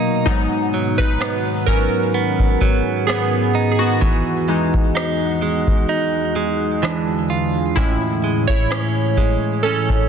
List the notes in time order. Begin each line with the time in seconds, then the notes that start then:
Already playing: B2 F#3 A#3 D#4
0.26 G#2 D#3 F#3 B3 D#4 F#4, kick
0.74 F#3
0.98 D#4 B4, kick
1.21 B3, cross-stick
1.66 F#3 C#4 A#4, kick
2.14 B3 G#4
2.39 kick
2.61 F#3, kick
3.07 B3 G#4, cross-stick
3.55 D#4
3.71 G#4
3.79 B3 F#4
4.01 E2 E3 G#3 D#4 F#4, kick
4.48 E3 G#3 D#4
4.74 kick
4.95 D#4, cross-stick
5.42 G#3
5.67 kick
5.89 D#4
6.36 G#3
6.83 E3 G#3 D4, cross-stick
7.30 F4
7.76 A2 E3 G#3 C#4 E4, kick
8.24 G#3
8.47 E4 C#5, kick
8.71 C#4, cross-stick
9.17 G#3, kick
9.63 C#4 A4
9.89 kick